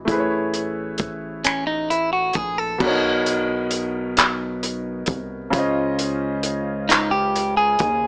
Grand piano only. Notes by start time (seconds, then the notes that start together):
0.05 A3 E4 G#4
0.11 B4 C5
0.20 C#5
2.78 B2 B3 D4
2.84 A#4 C#5
2.88 D#4
5.50 C#3 C#4
5.55 F4 C5 D#5